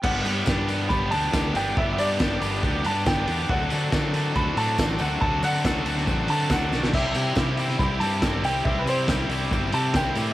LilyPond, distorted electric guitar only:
\new Staff \with { instrumentName = "Distorted electric guitar" } { \time 4/4 \key g \major \tempo 4 = 140 <b d' g'>8 <b d' g'>8 <b d' g'>8 <b d' g'>8 <b d' g'>8 <b d' g'>8 <b d' g'>8 <b d' g'>8 | <b d' g'>8 <b d' g'>8 <b d' g'>8 <b d' g'>8 <b d' g'>8 <b d' g'>8 <b d' g'>8 <b d' g'>8 | <a d' fis'>8 <a d' fis'>8 <a d' fis'>8 <a d' fis'>8 <a d' fis'>8 <a d' fis'>8 <a d' fis'>8 <a d' fis'>8 | <a d' fis'>8 <a d' fis'>8 <a d' fis'>8 <a d' fis'>8 <a d' fis'>8 <a d' fis'>8 <a d' fis'>8 <a d' fis'>8 |
<g c' e' g'>8 <g c' e' g'>8 <g c' e' g'>8 <g c' e' g'>8 <g c' e' g'>8 <g c' e' g'>8 <g c' e' g'>8 <g c' e' g'>8 | <g c' e' g'>8 <g c' e' g'>8 <g c' e' g'>8 <g c' e' g'>8 <g c' e' g'>8 <g c' e' g'>8 <g c' e' g'>8 <g c' e' g'>8 | }